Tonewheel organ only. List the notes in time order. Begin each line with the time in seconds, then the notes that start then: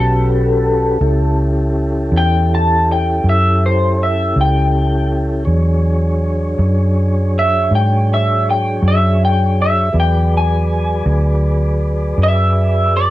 Already playing: C#4 F#4 G4 B4
1.01 C#4 E4 G4 A4
5.45 F#3 D4 G#4 C#5
9.93 F#3 G#4 B4 D5